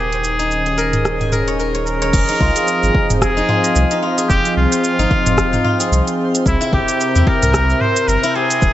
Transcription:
Already playing: sub bass D#1, analog synth pad D#3 A#4, guzheng E4 G4 A#4 G5, muted trumpet G#4, synth texture C5
0.12 closed hi-hat, shaker
0.24 shaker
0.35 analog synth pad C#4, guzheng D#4
0.40 analog synth pad G#4, closed hi-hat, shaker
0.51 shaker
0.58 analog synth pad D#5
0.66 guzheng G#4, closed hi-hat, shaker
0.78 guzheng A#4, shaker
0.93 closed hi-hat, mid tom, shaker
1.05 cross-stick, shaker
1.21 guzheng G#5, closed hi-hat, mid tom, shaker
1.32 guzheng A#4, mid tom, shaker
1.48 guzheng C#5, closed hi-hat, shaker
1.59 guzheng A#4, shaker
1.75 guzheng C#5, closed hi-hat, shaker
1.86 muted trumpet A#4, shaker
2.02 guzheng C#5, closed hi-hat, shaker
2.13 sub bass F1, analog synth pad F3, synth texture C5, kick, crash, shaker
2.29 guzheng D#4, closed hi-hat, shaker
2.41 sub bass C2, guzheng F4, kick
2.47 analog synth pad C4
2.56 guzheng G#4, closed hi-hat, shaker
2.68 shaker
2.83 sub bass G#1, shaker
2.95 kick
3.10 sub bass F1, closed hi-hat, mid tom, shaker
3.22 muted trumpet G#4, kick, cross-stick, shaker
3.37 guzheng D#4, shaker
3.49 guzheng F4, mid tom
3.64 closed hi-hat, shaker
3.76 sub bass C2, shaker
3.91 guzheng D#4, closed hi-hat, shaker
4.02 guzheng F4
4.18 guzheng G#4, closed hi-hat, shaker
4.30 sub bass F1, muted trumpet G4, kick, shaker
4.45 closed hi-hat, shaker
4.57 sub bass C2, muted trumpet F4
4.72 closed hi-hat, shaker
4.84 shaker
4.99 sub bass G#1, guzheng D#4, shaker
5.11 guzheng F4, kick
5.26 sub bass F1, closed hi-hat, mid tom, shaker
5.38 kick, cross-stick, shaker
5.53 guzheng D#4, mid tom, shaker
5.64 guzheng F4, mid tom
5.80 guzheng G#4, closed hi-hat, shaker
5.92 sub bass C2, shaker
6.07 closed hi-hat, shaker
6.35 closed hi-hat, shaker
6.46 sub bass C2, analog synth pad C3, muted trumpet E4, kick, shaker
6.61 guzheng E4, analog synth pad A#4, closed hi-hat, shaker
6.73 sub bass G1, guzheng G4, muted trumpet G4, kick
6.88 closed hi-hat, shaker
7.01 shaker
7.15 sub bass E2, guzheng E4, shaker
7.27 guzheng G4, muted trumpet A#4, kick
7.42 sub bass C2, guzheng A#4, analog synth pad E5, closed hi-hat, mid tom, shaker
7.54 kick, cross-stick, shaker
7.70 shaker
7.81 muted trumpet C5, mid tom
7.96 closed hi-hat, shaker
8.08 sub bass G1, muted trumpet A#4, shaker
8.23 guzheng E4, closed hi-hat, shaker
8.35 guzheng G4, muted trumpet G#4
8.50 closed hi-hat, shaker
8.62 sub bass D#1, analog synth pad D#3, kick, shaker

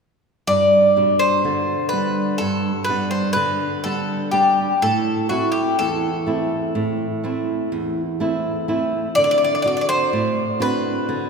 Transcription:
0.47 nylon-string guitar G2, bouzouki D5
0.96 nylon-string guitar B2 G3 D4
1.19 bouzouki C5
1.44 nylon-string guitar D3
1.89 nylon-string guitar G3, bouzouki B4
1.93 nylon-string guitar B3 D4
2.38 nylon-string guitar G2, bouzouki A4
2.84 bouzouki B4
2.89 nylon-string guitar G3 B3 D4
3.11 bouzouki C5
3.33 nylon-string guitar D3, bouzouki B4
3.84 nylon-string guitar G3 B3 D4, bouzouki A4
4.31 nylon-string guitar G3 B3 D4, bouzouki G4
4.82 nylon-string guitar A2, bouzouki A4
5.29 nylon-string guitar A3 C4 E4, bouzouki F#4
5.52 bouzouki G4
5.79 nylon-string guitar E2, bouzouki A4
6.26 nylon-string guitar A3 C4 E4
6.75 nylon-string guitar A2
7.24 nylon-string guitar A3 C4 E4
7.72 nylon-string guitar E2
8.20 nylon-string guitar A3 C4 E4
8.68 nylon-string guitar A3 C4 E4
9.15 nylon-string guitar D3, bouzouki D5
9.24 bouzouki D5
9.31 bouzouki D5
9.38 bouzouki D5
9.44 bouzouki D5
9.55 bouzouki D5
9.62 nylon-string guitar C4 D4 F#4, bouzouki D5
9.67 bouzouki D5
9.77 bouzouki D5
9.81 bouzouki D5
9.89 bouzouki C5
10.13 nylon-string guitar A2
10.60 nylon-string guitar C4 D4 F#4, bouzouki B4
11.09 nylon-string guitar D3

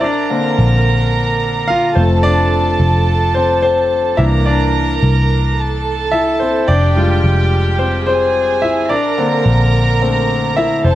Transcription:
0.01 picked electric bass A#1, grand piano D4 D5, violin section A#4 A#5
0.30 grand piano D3 A#3 C4
0.59 picked electric bass A#1
1.68 grand piano F4 F5
1.95 picked electric bass F1, grand piano F3 A3 C4 C5, violin section A4 A5
2.23 grand piano D4 D5
2.80 picked electric bass F1
3.34 grand piano C4 C5
3.62 grand piano C4 C5
4.17 picked electric bass C2, grand piano E3 A#3 D4 E4 E5, violin section A#4 A#5
4.46 grand piano D4 D5
5.03 picked electric bass C2
5.58 violin section A4 A5
6.12 grand piano E4 E5
6.40 grand piano C4 C5
6.68 picked electric bass F1, grand piano D4 D5, violin section G4 G5
6.96 grand piano G3 G#3 F4
7.24 picked electric bass F1
7.79 grand piano C4 C5
8.06 grand piano C4 C5, violin section G#4 G#5
8.62 grand piano E4 E5
8.89 picked electric bass A#1, grand piano D4 D5, violin section A#4 A#5
9.18 grand piano D3 A#3 C4
9.46 picked electric bass A#1
10.02 grand piano D3 A3 C4
10.57 grand piano E4 E5
10.84 picked electric bass F1, grand piano C4 C5, violin section A4 A5

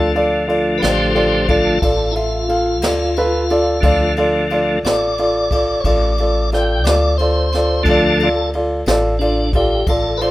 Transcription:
Already playing: upright bass D2, tonewheel organ D3 F3 A3 A4
0.15 grand piano F4 A4 D5, ride
0.48 grand piano F4 A4 D5, ride
0.78 tonewheel organ B4
0.82 upright bass A1, grand piano F4 A4 D5, tonewheel organ G4 C5, snare, ride
1.15 grand piano F4 A4 D5, tonewheel organ G4 C5, ride
1.47 tonewheel organ D3 F3 A3 F4 A4, grand piano F4 A4 D5, kick, ride
1.82 upright bass A1, grand piano F4 A4 D5, tonewheel organ F4 A4, kick, ride
2.11 tonewheel organ E4, grand piano A4
2.15 grand piano F4 E5, tonewheel organ F4, ride
2.48 grand piano F4 A4 F5, ride
2.82 upright bass D2, grand piano F4 A4 D5, snare, ride
3.16 grand piano F4 A4 B4, ride
3.50 grand piano F4 A4 D5, ride
3.81 upright bass D2, tonewheel organ D3 F3 A3, grand piano F4 A4 D5, kick, ride
4.16 grand piano F4 A4 D5, ride
4.50 grand piano F4 A4 D5, ride
4.83 upright bass A1, grand piano F4 A4 D5, tonewheel organ D5, snare, ride
5.18 grand piano F4 A4 D5, ride
5.51 grand piano F4 A4 D5, kick, ride
5.80 upright bass A1, tonewheel organ C#5, kick
5.85 grand piano F4 A4 D5, tonewheel organ D5, ride
6.18 grand piano F4 A4 D5, ride
6.52 grand piano F4 A4 D5, tonewheel organ G5, snare, ride
6.84 upright bass D2, grand piano F4 A4 D5, tonewheel organ D5, snare, ride
7.18 grand piano F4 A4 D5, tonewheel organ C5, ride
7.52 grand piano F4 A4 D5, snare, ride
7.83 upright bass D2, tonewheel organ D3 F3 A3 A4, kick, ride
7.89 grand piano F4 A4 D5
8.20 grand piano F4 A4, ride
8.24 grand piano D5
8.53 grand piano F4 A4 D5, ride
8.86 upright bass A1, grand piano F4 A4 D5, snare, ride
9.19 tonewheel organ D4, grand piano F4 A4 D5, ride
9.53 grand piano F4 A4 D5, tonewheel organ G4, kick, ride
9.87 upright bass A1, grand piano F4 A4 D5, tonewheel organ A4, kick, ride
10.17 grand piano F4, tonewheel organ B4, ride
10.22 grand piano A4 D5, tonewheel organ C5

